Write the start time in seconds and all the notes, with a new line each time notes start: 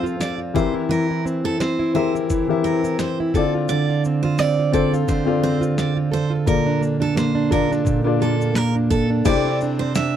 Already playing: F3 C4 F4 A4 F5
0.03 F4, shaker
0.20 C4 D5, snare, shaker
0.38 F4
0.54 E3 C4 G4 A#4 C5 E5, kick, shaker
0.74 E4
0.89 E3 A#4, shaker
1.11 E4
1.25 C4, shaker
1.44 E4 A4
1.60 C4 C5, snare, shaker
1.79 E4
1.94 E3 C4 G4 A#4 C5 E5, shaker
2.15 E4, shaker
2.30 E3, kick, shaker
2.48 E3 C4 E4 G4 A#4 E5
2.64 C4 A#4, shaker
2.84 E4, shaker
2.99 C4 C5, snare, shaker
3.20 E4
3.34 D3 C4 F4 A4 D5, kick, shaker
3.55 F4
3.69 D3 D5, shaker
3.89 F4
4.04 C4, shaker
4.23 F4 C5
4.38 C4 D5, snare, shaker
4.59 F4
4.72 C4 F4 A4 C5 D5, kick, shaker
4.93 F4, shaker
5.08 D3 C5, kick, shaker
5.25 C4 F4 A4 D5
5.43 C4 C5, shaker
5.61 F4, shaker
5.78 C4 D5, snare, shaker
5.97 F4
6.12 A4 C5, shaker
6.30 F4
6.46 A#2 A#3 F4 A4 A#4 D5, kick, shaker
6.66 D4
6.81 A#3, shaker
7.00 D4 A4
7.16 A#3 C5, snare, shaker
7.35 D4
7.50 A#3 F4 A4 A#4 D5, kick, shaker
7.71 D4, snare, shaker
7.85 A#2, kick, shaker
8.04 A#3 D4 F4 A4 D5
8.20 A#3 A4, shaker
8.40 D4, shaker
8.54 A#3 A#4, snare, shaker
8.75 D4
8.90 A4, kick, shaker
9.10 D4
9.25 C3 E4 G4 C5 D5 G5, kick, crash, shaker
9.45 C4
9.61 D4, shaker
9.79 C4 C5
9.95 D4 E5, snare, shaker